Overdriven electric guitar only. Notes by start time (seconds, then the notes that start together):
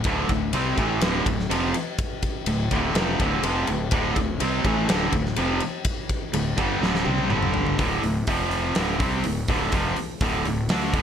0.05 D2 A2 D3
0.30 D2 A2
0.53 C3 G3 C4
0.78 A2 E3 A3
1.02 D2 A2 D3
1.26 D2 A2
1.49 F2 C3 F3
2.47 D2 A2
2.71 D2 A2 D3
2.95 F2 C3 F3
3.20 D2 A2 D3
3.43 F2 C3 F3
3.69 D2 A2
3.91 D2 A2 D3
4.16 D2 A2
4.41 C3 G3 C4
4.65 A2 E3 A3
4.88 D2 A2 D3
5.12 D2 A2
5.37 F2 C3 F3
6.33 D2 A2
6.57 G2 D3 G3
6.81 D2 A2 D3
7.05 C3 G3 C4
7.29 G2 D3 G3
7.78 D2 A2 D3
8.03 D2 A2
8.28 F2 C3 F3
8.76 D2 A2 D3
9.00 C3 G3 C4
9.24 D2 A2
9.49 D2 A2 D3
9.72 F2 C3 F3
9.98 muted overdriven electric guitar stroke
10.22 D2 A2 D3
10.45 D2 A2
10.69 D3 A3 D4
10.94 D2 A2 D3